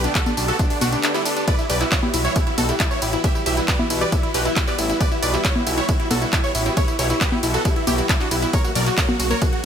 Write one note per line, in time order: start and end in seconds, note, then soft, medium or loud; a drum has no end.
0.04 0.12 D4 medium
0.04 closed hi-hat medium
0.04 tambourine soft
0.15 0.31 D3 medium
0.15 0.31 A3 medium
0.15 0.31 B3 medium
0.15 0.23 F#4 medium
0.15 0.31 G4 medium
0.15 0.23 A4 loud
0.15 kick loud
0.15 clap loud
0.15 closed hi-hat medium
0.15 tambourine soft
0.26 0.34 D4 medium
0.26 closed hi-hat soft
0.26 tambourine soft
0.26 high conga medium
0.37 0.51 B1 loud
0.37 0.53 D3 medium
0.37 0.53 A3 medium
0.37 0.53 B3 medium
0.37 0.45 D4 medium
0.37 0.53 G4 medium
0.37 open hi-hat loud
0.37 tambourine medium
0.48 0.56 F#4 medium
0.48 0.56 A4 medium
0.48 closed hi-hat medium
0.48 tambourine soft
0.59 0.75 D3 medium
0.59 0.75 A3 medium
0.59 0.75 B3 medium
0.59 0.67 D4 medium
0.59 0.75 G4 medium
0.59 kick loud
0.59 closed hi-hat medium
0.59 tambourine soft
0.70 0.78 D4 medium
0.70 open hi-hat medium
0.70 tambourine soft
0.81 0.95 B1 loud
0.81 0.97 D3 medium
0.81 0.97 A3 medium
0.81 0.97 B3 medium
0.81 0.89 D4 medium
0.81 0.89 F#4 loud
0.81 0.97 G4 medium
0.81 open hi-hat loud
0.81 tambourine medium
0.81 high conga medium
0.92 1.00 D4 medium
0.92 closed hi-hat medium
0.92 tambourine soft
1.03 1.19 D3 medium
1.03 1.19 A3 medium
1.03 1.19 B3 medium
1.03 1.11 D4 medium
1.03 1.19 G4 medium
1.03 clap loud
1.03 closed hi-hat medium
1.03 tambourine soft
1.14 1.22 G3 medium
1.14 1.22 E4 medium
1.14 clap soft
1.14 closed hi-hat soft
1.14 tambourine soft
1.25 1.41 D3 medium
1.25 1.41 A3 medium
1.25 1.41 B3 medium
1.25 1.33 D4 medium
1.25 1.41 G4 medium
1.25 open hi-hat loud
1.25 tambourine medium
1.36 1.44 D4 medium
1.36 closed hi-hat medium
1.36 tambourine soft
1.47 1.63 E3 medium
1.47 1.63 G3 loud
1.47 1.63 B3 medium
1.47 1.51 E4 medium
1.47 1.63 F#4 medium
1.47 1.55 B4 medium
1.47 1.55 D5 loud
1.47 kick loud
1.47 closed hi-hat medium
1.47 ride medium
1.47 tambourine soft
1.59 1.66 E4 medium
1.59 1.67 E4 medium
1.59 tambourine soft
1.69 1.83 B1 loud
1.69 1.85 E3 loud
1.69 1.85 G3 medium
1.69 1.85 B3 medium
1.69 1.85 F#4 medium
1.69 1.75 G4 medium
1.69 1.78 B4 medium
1.69 1.77 D5 medium
1.69 open hi-hat loud
1.69 ride medium
1.69 tambourine medium
1.80 1.88 E4 medium
1.80 1.89 E4 medium
1.80 1.84 E4 medium
1.80 clap soft
1.80 closed hi-hat medium
1.80 tambourine soft
1.92 2.07 E3 medium
1.92 2.07 G3 medium
1.92 2.07 B3 medium
1.92 2.00 E4 medium
1.92 2.07 F#4 medium
1.92 2.00 C#5 loud
1.92 2.00 C#5 medium
1.92 kick loud
1.92 clap loud
1.92 closed hi-hat medium
1.92 ride medium
1.92 tambourine soft
2.03 2.11 E4 medium
2.03 2.08 G4 medium
2.03 high conga medium
2.14 2.28 B1 loud
2.14 2.29 E3 medium
2.14 2.29 G3 medium
2.14 2.29 B3 medium
2.14 2.22 E4 medium
2.14 2.17 E4 medium
2.14 2.29 F#4 medium
2.14 open hi-hat loud
2.14 ride medium
2.14 tambourine medium
2.25 2.33 E4 medium
2.25 2.33 C#5 medium
2.25 closed hi-hat medium
2.25 tambourine soft
2.36 2.51 E3 medium
2.36 2.51 G3 medium
2.36 2.51 B3 medium
2.36 2.44 E4 medium
2.36 2.51 F#4 medium
2.36 2.41 G4 medium
2.36 kick loud
2.36 closed hi-hat medium
2.36 ride medium
2.36 tambourine soft
2.47 2.55 E4 medium
2.47 2.50 E4 medium
2.47 closed hi-hat soft
2.58 2.72 B1 loud
2.58 2.73 E3 medium
2.58 2.73 G3 medium
2.58 2.73 B3 medium
2.58 2.66 F#4 medium
2.58 2.73 F#4 medium
2.58 2.66 A4 loud
2.58 2.66 A4 medium
2.58 open hi-hat loud
2.58 ride medium
2.58 tambourine medium
2.58 high conga medium
2.69 2.77 E4 medium
2.69 2.75 G4 medium
2.69 closed hi-hat medium
2.69 tambourine soft
2.80 2.96 E3 medium
2.80 2.95 G3 medium
2.80 2.95 B3 medium
2.80 2.88 E4 medium
2.80 2.83 E4 medium
2.80 2.95 F#4 medium
2.80 kick loud
2.80 clap loud
2.80 closed hi-hat medium
2.80 ride medium
2.80 tambourine soft
2.91 2.99 E4 medium
2.91 2.99 C#5 medium
2.91 tambourine soft
3.02 3.16 A1 medium
3.02 3.18 E3 medium
3.02 3.18 G3 medium
3.02 3.18 B3 medium
3.02 3.10 E4 medium
3.02 3.17 F#4 medium
3.02 3.08 G4 medium
3.02 open hi-hat loud
3.02 ride medium
3.02 tambourine medium
3.13 3.21 E4 medium
3.13 3.16 E4 medium
3.13 closed hi-hat medium
3.13 tambourine soft
3.24 3.40 E3 loud
3.24 3.39 G3 medium
3.24 3.40 B3 medium
3.24 3.40 F#4 medium
3.24 3.32 G4 medium
3.24 3.32 E5 loud
3.24 kick loud
3.24 closed hi-hat medium
3.24 ride medium
3.24 tambourine soft
3.35 3.43 E4 medium
3.35 3.41 G4 medium
3.35 tambourine soft
3.46 3.60 B1 loud
3.46 3.62 E3 loud
3.46 3.62 G3 medium
3.46 3.62 B3 medium
3.46 3.49 E4 medium
3.46 3.62 F#4 loud
3.46 3.54 G4 medium
3.46 3.54 E5 medium
3.46 open hi-hat loud
3.46 ride medium
3.46 tambourine medium
3.57 3.65 E4 medium
3.57 closed hi-hat medium
3.57 tambourine soft
3.68 3.84 E3 medium
3.68 3.84 G3 medium
3.68 3.84 B3 medium
3.68 3.84 F#4 medium
3.68 3.74 G4 medium
3.68 3.76 B4 medium
3.68 3.76 D5 loud
3.68 kick loud
3.68 clap loud
3.68 closed hi-hat medium
3.68 ride medium
3.68 tambourine soft
3.79 3.87 E4 medium
3.79 3.83 E4 medium
3.79 high conga medium
3.90 4.04 B1 loud
3.90 4.06 E3 medium
3.90 4.06 G3 medium
3.90 4.06 B3 loud
3.90 3.98 E4 medium
3.90 4.06 F#4 medium
3.90 open hi-hat loud
3.90 ride medium
3.90 tambourine medium
4.01 4.07 G4 medium
4.01 4.09 B4 medium
4.01 4.09 D5 medium
4.01 closed hi-hat medium
4.01 tambourine soft
4.12 4.28 E3 medium
4.12 4.28 G3 medium
4.12 4.28 B3 loud
4.12 4.20 E4 medium
4.12 4.16 E4 medium
4.12 4.20 E4 medium
4.12 4.28 F#4 medium
4.12 kick loud
4.12 closed hi-hat medium
4.12 ride medium
4.12 tambourine soft
4.23 4.31 E4 medium
4.23 closed hi-hat soft
4.34 4.48 B1 loud
4.34 4.50 E3 medium
4.34 4.50 G3 medium
4.34 4.50 B3 medium
4.34 4.50 F#4 medium
4.34 4.40 G4 medium
4.34 4.42 G4 medium
4.34 4.42 B4 medium
4.34 4.42 B4 loud
4.34 open hi-hat loud
4.34 ride medium
4.34 tambourine medium
4.45 4.53 E4 medium
4.45 4.49 E4 medium
4.45 4.53 E4 medium
4.45 closed hi-hat medium
4.45 tambourine soft
4.56 4.72 E3 medium
4.56 4.72 G3 medium
4.56 4.72 B3 medium
4.56 4.64 E4 medium
4.56 4.72 F#4 medium
4.56 kick loud
4.56 clap loud
4.56 closed hi-hat medium
4.56 ride medium
4.56 tambourine soft
4.67 4.73 G4 medium
4.67 4.75 B4 medium
4.67 4.75 D5 medium
4.67 clap soft
4.67 tambourine soft
4.78 4.92 A1 medium
4.78 4.94 E3 medium
4.78 4.94 G3 medium
4.78 4.94 B3 medium
4.78 4.86 E4 medium
4.78 4.82 E4 medium
4.78 4.86 E4 medium
4.78 4.94 F#4 medium
4.78 open hi-hat loud
4.78 ride medium
4.78 tambourine medium
4.89 4.97 E4 medium
4.89 closed hi-hat medium
4.89 tambourine soft
5.00 5.16 E3 medium
5.00 5.16 G3 medium
5.00 5.16 B3 medium
5.00 5.16 F#4 medium
5.00 5.06 G4 medium
5.00 5.08 B4 medium
5.00 5.08 D5 medium
5.00 5.08 D5 loud
5.00 kick loud
5.00 closed hi-hat medium
5.00 ride medium
5.00 tambourine soft
5.11 5.19 E4 medium
5.11 5.15 E4 medium
5.11 tambourine soft
5.22 5.36 B1 loud
5.22 5.38 E3 medium
5.22 5.38 G3 medium
5.22 5.38 B3 medium
5.22 5.38 F#4 medium
5.22 5.30 B4 medium
5.22 5.30 D5 medium
5.22 open hi-hat loud
5.22 ride medium
5.22 tambourine medium
5.33 5.41 E4 medium
5.33 5.39 G4 medium
5.33 clap soft
5.33 closed hi-hat medium
5.33 tambourine soft
5.44 5.60 E3 medium
5.44 5.60 G3 medium
5.44 5.60 B3 medium
5.44 5.52 E4 medium
5.44 5.48 E4 medium
5.44 5.60 F#4 medium
5.44 5.52 C#5 loud
5.44 5.52 C#5 medium
5.44 kick loud
5.44 clap loud
5.44 closed hi-hat medium
5.44 ride medium
5.44 tambourine soft
5.55 5.63 E4 medium
5.55 high conga medium
5.67 5.80 B1 loud
5.67 5.82 E3 medium
5.67 5.82 G3 medium
5.67 5.82 B3 medium
5.67 5.74 E4 medium
5.67 5.82 F#4 medium
5.67 5.72 G4 medium
5.67 open hi-hat loud
5.67 ride medium
5.67 tambourine medium
5.77 5.85 E4 medium
5.77 5.81 E4 medium
5.77 5.85 C#5 medium
5.77 5.86 C#5 medium
5.77 closed hi-hat medium
5.77 tambourine soft
5.88 6.04 E3 medium
5.88 6.04 G3 loud
5.88 6.04 B3 medium
5.88 5.96 E4 medium
5.88 5.97 E4 medium
5.88 6.04 F#4 medium
5.88 kick loud
5.88 closed hi-hat medium
5.88 ride medium
5.88 tambourine soft
5.99 6.08 E4 medium
5.99 6.05 G4 medium
5.99 closed hi-hat soft
6.10 6.25 B1 loud
6.10 6.26 E3 loud
6.10 6.26 G3 medium
6.10 6.26 B3 medium
6.10 6.14 E4 medium
6.10 6.19 F#4 medium
6.10 6.26 F#4 medium
6.10 6.19 A4 loud
6.10 open hi-hat loud
6.10 ride medium
6.10 tambourine medium
6.10 high conga medium
6.21 6.30 E4 medium
6.21 closed hi-hat soft
6.21 tambourine soft
6.33 6.48 E3 medium
6.33 6.48 G3 medium
6.33 6.48 B3 medium
6.33 6.41 E4 medium
6.33 6.48 F#4 medium
6.33 6.38 G4 medium
6.33 kick loud
6.33 clap loud
6.33 closed hi-hat medium
6.33 ride medium
6.33 tambourine soft
6.44 6.52 E4 medium
6.44 6.47 E4 medium
6.44 6.52 C#5 medium
6.44 tambourine soft
6.55 6.69 A1 loud
6.55 6.70 E3 medium
6.55 6.70 G3 medium
6.55 6.70 B3 medium
6.55 6.63 E4 medium
6.55 6.70 F#4 medium
6.55 open hi-hat loud
6.55 ride medium
6.55 tambourine medium
6.66 6.74 E4 medium
6.66 6.71 G4 medium
6.66 closed hi-hat medium
6.66 tambourine soft
6.77 6.92 E3 medium
6.77 6.92 G3 medium
6.77 6.92 B3 loud
6.77 6.85 E4 medium
6.77 6.80 E4 medium
6.77 6.92 F#4 medium
6.77 6.85 C#5 loud
6.77 kick loud
6.77 closed hi-hat medium
6.77 ride medium
6.77 tambourine soft
6.88 6.96 E4 medium
6.88 closed hi-hat soft
6.88 tambourine soft
6.99 7.13 B1 loud
6.99 7.14 E3 medium
6.99 7.14 G3 medium
6.99 7.14 B3 medium
6.99 7.07 E4 medium
6.99 7.14 F#4 loud
6.99 7.05 G4 medium
6.99 7.07 C#5 medium
6.99 open hi-hat loud
6.99 ride medium
6.99 tambourine medium
7.10 7.13 E4 medium
7.10 7.18 E4 medium
7.10 closed hi-hat medium
7.10 tambourine soft
7.21 7.36 E3 medium
7.21 7.36 G3 medium
7.21 7.36 B3 medium
7.21 7.36 F#4 medium
7.21 7.29 G4 medium
7.21 7.29 B4 medium
7.21 7.29 B4 loud
7.21 kick loud
7.21 clap loud
7.21 closed hi-hat medium
7.21 ride medium
7.21 tambourine soft
7.32 7.40 E4 medium
7.32 7.38 G4 medium
7.32 high conga medium
7.43 7.57 B1 loud
7.43 7.59 E3 medium
7.43 7.59 G3 medium
7.43 7.59 B3 medium
7.43 7.51 E4 medium
7.43 7.46 E4 medium
7.43 7.51 E4 medium
7.43 7.59 F#4 medium
7.43 open hi-hat loud
7.43 ride medium
7.43 tambourine medium
7.54 7.62 F#4 medium
7.54 7.62 A4 medium
7.54 closed hi-hat soft
7.54 tambourine soft
7.65 7.81 E3 loud
7.65 7.81 G3 medium
7.65 7.81 B3 loud
7.65 7.73 E4 medium
7.65 7.81 F#4 medium
7.65 7.71 G4 medium
7.65 kick loud
7.65 closed hi-hat medium
7.65 ride medium
7.65 tambourine soft
7.76 7.84 E4 medium
7.76 7.80 E4 medium
7.76 closed hi-hat soft
7.87 8.01 B1 loud
7.87 8.03 E3 medium
7.87 8.03 G3 medium
7.87 8.03 B3 medium
7.87 7.95 E4 medium
7.87 8.03 F#4 medium
7.87 7.95 G4 loud
7.87 open hi-hat loud
7.87 ride medium
7.87 tambourine medium
7.87 high conga medium
7.98 8.06 E4 medium
7.98 8.04 G4 medium
7.98 closed hi-hat medium
7.98 tambourine soft
8.09 8.25 E3 medium
8.09 8.25 G3 medium
8.09 8.25 B3 medium
8.09 8.17 E4 medium
8.09 8.13 E4 medium
8.09 8.17 E4 medium
8.09 8.25 F#4 medium
8.09 kick loud
8.09 clap loud
8.09 closed hi-hat medium
8.09 ride medium
8.09 tambourine soft
8.20 8.28 D4 medium
8.20 8.28 F#4 loud
8.20 8.28 F#4 medium
8.20 clap soft
8.20 tambourine soft
8.31 8.45 B1 medium
8.31 8.47 E3 medium
8.31 8.47 G3 medium
8.31 8.47 B3 medium
8.31 8.39 E4 medium
8.31 8.47 F#4 medium
8.31 8.37 G4 medium
8.31 open hi-hat loud
8.31 ride medium
8.31 tambourine medium
8.42 8.50 E4 medium
8.42 8.46 E4 medium
8.42 8.50 E4 medium
8.42 closed hi-hat soft
8.42 tambourine soft
8.53 8.69 C#3 medium
8.53 8.69 F#3 medium
8.53 8.69 A#3 medium
8.53 8.69 F#4 medium
8.53 8.61 A#4 medium
8.53 8.61 C#5 loud
8.53 kick loud
8.53 closed hi-hat medium
8.53 ride medium
8.53 tambourine soft
8.64 8.70 A#3 medium
8.64 8.72 F#4 medium
8.64 tambourine soft
8.75 8.89 B1 loud
8.75 8.91 C#3 loud
8.75 8.91 F#3 loud
8.75 8.79 F#3 medium
8.75 8.91 A#3 medium
8.75 8.91 F#4 medium
8.75 8.83 A#4 medium
8.75 8.83 D5 medium
8.75 open hi-hat loud
8.75 ride medium
8.75 tambourine medium
8.86 8.94 F#4 medium
8.86 clap soft
8.86 closed hi-hat medium
8.86 tambourine soft
8.97 9.13 C#3 medium
8.97 9.13 F#3 medium
8.97 9.13 A#3 medium
8.97 9.03 A#3 medium
8.97 9.13 F#4 medium
8.97 9.05 A#4 medium
8.97 9.05 C#5 loud
8.97 9.05 C#5 medium
8.97 kick loud
8.97 clap loud
8.97 closed hi-hat medium
8.97 ride medium
8.97 tambourine soft
9.08 9.12 F#3 medium
9.08 9.16 F#4 medium
9.08 high conga medium
9.19 9.33 B1 loud
9.19 9.35 C#3 medium
9.19 9.35 F#3 medium
9.19 9.35 A#3 medium
9.19 9.27 F#4 medium
9.19 9.35 F#4 medium
9.19 open hi-hat loud
9.19 ride medium
9.19 tambourine medium
9.30 9.36 A#3 medium
9.30 9.38 A#4 medium
9.30 9.38 C#5 medium
9.30 9.39 C#5 loud
9.30 closed hi-hat soft
9.30 tambourine soft
9.41 9.57 C#3 loud
9.41 9.57 F#3 medium
9.41 9.45 F#3 medium
9.41 9.57 A#3 loud
9.41 9.49 F#4 medium
9.41 9.57 F#4 loud
9.41 kick loud
9.41 closed hi-hat medium
9.41 ride medium
9.41 tambourine soft
9.53 9.61 F#4 medium
9.53 closed hi-hat soft